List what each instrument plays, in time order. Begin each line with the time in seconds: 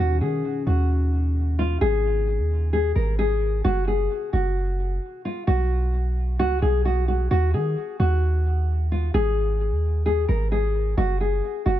Already playing: harp B3 C#4
0.00 808-style bass D#2, nylon-string guitar F#4
0.21 808-style bass D#3, nylon-string guitar G#4
0.67 808-style bass D#2, nylon-string guitar F#4
1.59 nylon-string guitar F4
1.81 808-style bass G#1, nylon-string guitar G#4
2.39 808-style bass D#2
2.73 nylon-string guitar G#4
2.95 808-style bass G#1, nylon-string guitar A#4
3.19 nylon-string guitar G#4
3.64 808-style bass F#1, nylon-string guitar F#4
3.88 nylon-string guitar G#4
4.33 808-style bass F#1, nylon-string guitar F#4
5.25 nylon-string guitar F4
5.47 808-style bass B1, nylon-string guitar F#4
6.39 808-style bass C#2, nylon-string guitar F#4
6.62 808-style bass B1, nylon-string guitar G#4
6.85 nylon-string guitar F#4
7.08 nylon-string guitar F#4
7.31 808-style bass D#2, nylon-string guitar F#4
7.54 808-style bass D#3, nylon-string guitar G#4
8.00 808-style bass D#2, nylon-string guitar F#4
8.92 nylon-string guitar F4
9.14 808-style bass G#1, nylon-string guitar G#4
9.72 808-style bass D#2
10.06 nylon-string guitar G#4
10.28 808-style bass G#1, nylon-string guitar A#4
10.52 nylon-string guitar G#4
10.97 808-style bass F#1, nylon-string guitar F#4
11.21 nylon-string guitar G#4
11.66 808-style bass F#1, nylon-string guitar F#4